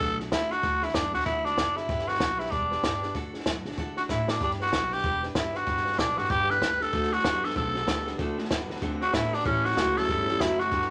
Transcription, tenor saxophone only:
Already playing: A4
0.32 E4
0.52 F#4
0.84 E4
0.95 D4
1.15 F#4
1.25 E4
1.45 D4
1.77 E4
2.08 F#4
2.39 E4
2.51 D4
3.98 F#4
4.10 E4
4.30 D4
4.43 D4
4.62 F#4
4.93 G4
5.37 E4
5.57 F#4
5.99 D4
6.18 F#4
6.31 G4
6.50 B4
6.82 A4
7.13 F#4
7.44 A4
7.57 A4
9.02 F#4
9.14 E4
9.34 D4
9.46 C#4
9.65 F#4
9.97 A4
10.41 E4
10.60 F#4

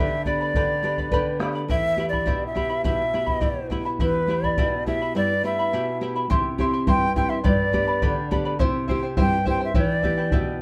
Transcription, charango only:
Already playing: G4 B4 G5
0.00 D5 B5
0.26 B4 D5 G5 B5
0.41 B4 D5 B5
0.56 G4 B4 D5 G5 B5
0.84 B4 D5 G5 B5
0.98 B4 D5 B5
1.13 G4 B4 D5 G5 B5
1.41 B4 D5 G5 B5
1.55 B4 D5 B5
1.70 E4 G4 E5 G5 B5
1.99 E4 E5 G5 B5
2.13 E4 E5 B5
2.27 E4 G4 E5 G5 B5
2.55 E4 E5 G5 B5
2.70 E4 E5 B5
2.84 E4 G4 E5 G5 B5
3.13 E4 E5 G5 B5
3.26 E4 E5 B5
3.41 E4 G4 E5 G5 B5
3.70 E4 E5 G5 B5
3.85 E4 E5 B5
4.00 E4 G4 E5 G5 B5
4.29 E4 E5 G5 B5
4.44 E4 E5 B5
4.58 E4 G4 E5 G5 B5
4.87 E4 E5 G5 B5
5.02 E4 E5 B5
5.16 E4 G4 E5 G5 B5
5.44 E4 E5 G5 B5
5.59 E4 E5 B5
5.73 E4 G4 E5 G5 B5
6.02 E4 E5 G5 B5
6.16 E4 E5 B5
6.30 E4 G4 E5 G5 C6
6.60 E4 E5 G5 C6
6.74 E4 E5 C6
6.87 E4 G4 E5 G5 C6
7.16 E4 E5 G5 C6
7.30 E4 E5 C6
7.44 G4 B4 D5 G5 B5
7.73 B4 D5 G5 B5
7.88 B4 D5 B5
8.02 G4 B4 D5 G5 B5
8.31 B4 D5 G5 B5
8.45 B4 D5 B5
8.59 E4 G4 C5 E5 G5
8.88 E4 C5 E5 G5
9.03 E4 C5 G5
9.17 E4 G4 C5 E5 G5
9.46 E4 C5 E5 G5
9.61 E4 C5 G5
9.75 E4 G4 B4 E5 G5
10.03 E4 B4 E5 G5
10.18 E4 B4 G5
10.32 E4 G4 B4 E5 G5

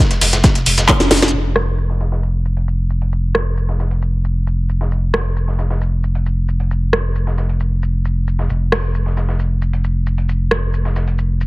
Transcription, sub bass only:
0.11 F1
0.21 F1
0.33 F1
0.55 F1
0.66 F1
0.78 F1
1.00 F1
1.11 F1
1.22 F1
1.33 F1
8.50 F1

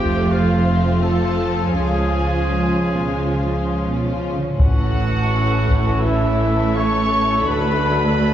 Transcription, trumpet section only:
Already playing: G4
0.30 F4
0.99 A4
1.72 G#4
4.60 F#4
6.03 E4
6.75 C#5
7.45 B4

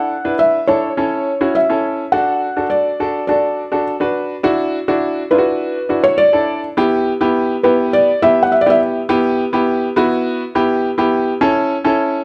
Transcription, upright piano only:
Already playing: D4 E4 A4
0.25 D4 E4 B4
0.68 D4 E4 A4
0.97 C#4 E4 A4
1.41 C#4 E4 F#4
1.69 C#4 E4 A4
2.13 D4 F#4 A4
2.56 D4 F#4 A4
3.00 D4 F#4 A4
3.28 D4 F#4 A4
3.72 D4 F#4 A4
4.00 D4 F#4 B4
4.43 D4 E4 F#4
4.88 D4 E4 F#4
5.31 D4 E4 F4
5.38 F#4
5.89 D4 E4 F#4
6.33 D4 E4 A4
6.77 B3 E4 G4
7.21 B3 E4 G4
7.64 B3 E4 G4
8.22 B3 E4 G4
8.66 B3 E4 G4
9.09 B3 E4 G4
9.53 B3 E4 G4
9.96 B3 E4 F#4
10.55 B3 E4 G4
10.98 B3 E4 G4
11.41 C#4 E4 A4
11.84 C#4 E4 A4

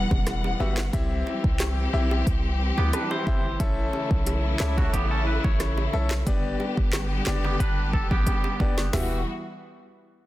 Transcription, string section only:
Already playing: E3 G3 B3 F#5
0.93 E3 C4 G4
3.60 C#3 A3 E4
6.27 D3 G3 B3 G4
8.93 E3 G3 B3 F#4

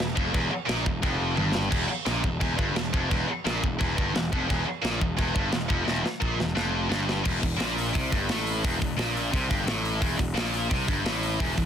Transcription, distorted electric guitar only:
Already playing: E2
0.15 F2
0.33 E2
0.51 muted distorted electric guitar stroke
0.66 A#2
0.84 E2
1.02 F2
1.36 G2
1.70 E2
1.88 muted distorted electric guitar stroke
2.06 A#2
2.23 E2
2.40 E2
2.57 G2
2.76 E2
2.93 F2
3.10 E2
3.28 muted distorted electric guitar stroke
3.45 A#2
3.62 E2
3.79 E2
3.97 G2
4.15 E2
4.32 F2
4.48 E2
4.65 muted distorted electric guitar stroke
4.82 A#2
5.00 E2
5.17 E2
5.35 G2
5.53 E2
5.69 F2
5.85 E2
6.03 muted distorted electric guitar stroke
6.20 A#2
6.38 E2
6.55 F2
6.89 G2
7.24 E2
7.41 E2
7.57 A#2
7.93 C3
8.10 G2
8.29 A2
8.63 E2
8.79 E2
8.97 A#2
9.32 C3
9.48 G2
9.66 A2
10.00 E2
10.17 E2
10.34 A#2
10.69 C3
10.87 G2
11.04 A2
11.39 E2
11.56 E2

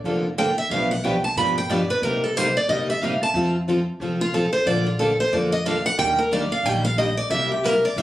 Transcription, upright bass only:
0.04 F1
0.70 B1
1.36 G2
2.02 C2
2.69 G1
3.34 F2
4.00 C2
4.66 A#1
5.32 F2
5.98 D#2
6.63 A#1
7.30 C2
7.96 G1

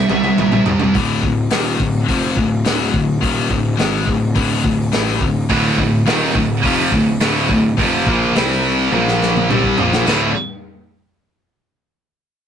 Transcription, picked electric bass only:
0.09 C2
0.38 A#1
0.66 C2
0.95 D1
1.23 D1
1.51 D#1
1.80 D1
2.09 F1
2.37 D1
2.66 D1
2.94 D1
3.22 D#1
3.51 D1
3.79 G#1
4.07 D1
4.36 D1
4.64 D1
4.93 A1
5.21 D1
5.50 D1
5.78 D1
6.06 D#1
6.35 D1
6.64 F1
6.92 D1
7.20 D1
7.49 D1
7.78 F1
8.07 A#1
8.35 C2
8.92 A#1
9.49 C2
9.78 A#1
10.06 D1

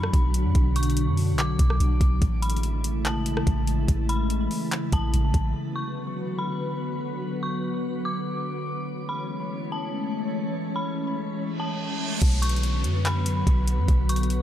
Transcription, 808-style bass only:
Already playing: F#2
0.13 B1
0.45 F#2
0.55 B1
1.07 F#2
1.33 B1
1.59 B1
1.80 B1
2.01 B1
2.22 A1
3.47 A1
3.88 A1
4.92 A1
5.13 A1
5.34 A1
12.22 B1
12.84 F#2
13.47 B1
13.78 F#2
13.88 B1

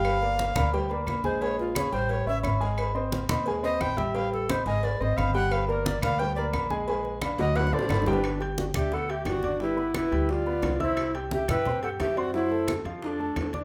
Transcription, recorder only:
Already playing: F5
1.25 C5
1.41 C#5
1.60 F4
1.76 G#4
1.93 C5
2.11 C#5
2.28 E5
3.64 D#5
3.81 G5
3.97 E5
4.15 F5
4.33 A4
4.51 C5
4.66 D#5
4.84 D5
5.01 D#5
5.17 F5
5.35 F#5
5.52 F5
5.68 A#4
5.86 D5
6.02 F5
6.19 G5
6.36 D5
7.40 D#5
7.56 F#5
7.73 D5
8.08 D#4
8.13 D4
8.59 F#4
8.77 G4
8.94 A4
9.10 G4
9.27 F#4
9.62 E4
9.96 E4
10.30 F4 F#4
10.82 E4
11.33 G4
11.50 B4
11.83 A4
12.00 G4
12.18 F#4
12.34 E4
13.03 D4 D#4

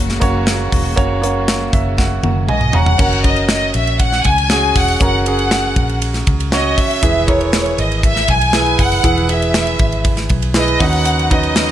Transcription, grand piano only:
Already playing: A#3 C#4 F#4 C#5
0.20 A#3 C#4 F#4 C#5
0.96 A#3 C#4 F#4 C#5
1.22 A#3 C#4 F#4 C#5
1.73 E5
1.98 F#5
2.23 A#4 F#5
2.49 G#5
2.74 C#5 A#5
2.98 C#4 F#4 A#4
3.24 C#4 F#4 A#4
4.50 C#4 F#4 G#4
5.00 C#4 F#4 A#4
5.26 C#4 F#4 G#4
6.52 C#4 F#4 C#5
7.02 E3 E4 G#4 B4
7.27 E4 G#4 A#4
8.53 E4 G#4 B4
9.03 E3 E4 G#4 B4
9.29 E4 G#4 B4
10.55 E4 G#4 B4
10.80 D#3 C#4 D#4 F#4 B4 D#5
11.30 C#4 D#4 F#4 B4 F#5

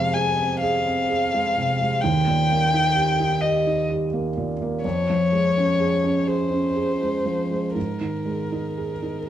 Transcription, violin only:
Already playing: F5
0.13 G#5
0.60 F5
2.01 G5
3.41 D#5
4.83 C#5
6.27 C5
7.75 A#4

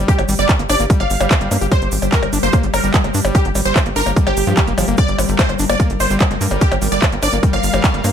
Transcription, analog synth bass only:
0.19 G1
0.29 G#1
0.39 G1
0.59 G1
0.70 G1
0.80 G1
1.00 G1
1.10 G1
1.21 G1
1.41 G1
1.51 G2
1.61 G1
1.82 G1
1.92 G#1
2.02 G1
2.23 G1
2.33 G1
2.43 G1
2.63 G1
2.74 G1
2.84 G1
3.04 G1
3.14 G2
3.25 G1
3.45 G1
3.55 G#1
3.65 G1
3.86 G1
3.96 G1
4.06 G1
4.27 G1
4.37 G1
4.47 G2
4.67 F1
4.78 G1
4.88 G1
5.08 G1
5.18 G#1
5.29 G1
5.49 G1
5.59 G1
5.70 G1
5.90 G1
6.00 G1
6.10 G1
6.31 G1
6.41 G2
6.51 G1
6.72 G1
6.82 G#1
6.92 G1
7.12 G1
7.23 G1
7.33 G1
7.53 G1
7.63 G1
7.74 G1
7.94 G1
8.04 G2

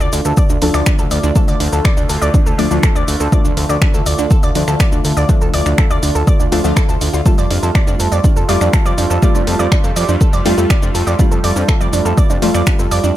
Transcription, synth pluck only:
0.00 D5
0.13 D4
0.25 A4
0.37 D5
0.50 D4
0.62 A4
0.74 D5
0.86 D4
0.99 A4
1.11 D5
1.23 D4
1.36 A4
1.48 D5
1.60 D4
1.73 A4
1.85 D5
1.97 D4
2.09 A4
2.22 D5
2.34 D4
2.46 A4
2.58 D5
2.71 D4
2.83 A4
2.95 D5
3.08 D4
3.20 A4
3.32 D5
3.45 D4
3.57 A4
3.69 D5
3.82 D4
3.94 A4
4.06 D5
4.19 D4
4.31 A4
4.43 D5
4.55 D4
4.68 A4
4.80 D5
4.92 D4
5.04 A4
5.17 D5
5.29 D4
5.41 A4
5.54 D5
5.66 D4
5.78 A4
5.91 D5
6.03 D4
6.15 A4
6.27 D5
6.40 D4
6.52 F4
6.64 F4
6.76 A4
6.89 A4
7.01 D4
7.13 F4
7.26 A4
7.38 D5
7.50 D4
7.63 A4
7.75 D5
7.87 D4
8.00 A4
8.12 D5
8.24 D4
8.36 A4
8.49 D5
8.61 D4
8.73 A4
8.86 D5
8.98 D4
9.10 A4
9.22 D5
9.35 D4
9.47 A4
9.59 D5
9.72 D4
9.84 A4
9.96 D5
10.09 D4
10.21 A4
10.33 D5
10.45 D4
10.58 A4
10.70 D5
10.82 D4
10.95 A4
11.07 D5
11.19 D4
11.31 A4
11.44 D5
11.56 D4
11.68 A4
11.81 D5
11.93 D4
12.05 A4
12.18 D5
12.30 D4
12.42 A4
12.54 D5
12.67 D4
12.79 A4
12.91 D5
13.04 D4

